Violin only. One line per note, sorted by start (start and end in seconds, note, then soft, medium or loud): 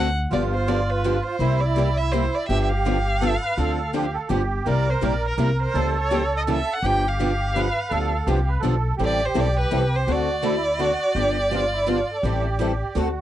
0.33 0.43 D5 medium
0.54 0.70 C5 medium
0.68 0.91 D5 medium
0.90 1.25 B4 medium
1.26 1.62 C5 medium
1.60 1.99 D5 medium
1.97 2.14 E5 medium
2.12 2.36 C5 medium
2.35 2.48 D5 medium
2.48 2.61 E5 loud
2.63 2.71 E5 medium
2.69 4.15 F5 loud
4.67 4.92 D5 medium
4.90 5.06 C5 medium
5.05 5.25 D5 medium
5.28 5.39 A#4 medium
5.43 5.61 A#4 medium
5.62 5.95 C5 medium
6.00 6.32 C#5 medium
6.37 6.42 D#5 medium
6.52 6.75 E5 medium
6.73 6.87 F#5 loud
6.86 7.10 G5 loud
7.08 8.51 F5 medium
9.04 9.27 D5 loud
9.25 9.41 C5 medium
9.40 9.59 D5 loud
9.60 9.97 B4 medium
9.96 10.13 C5 medium
10.11 12.98 D5 loud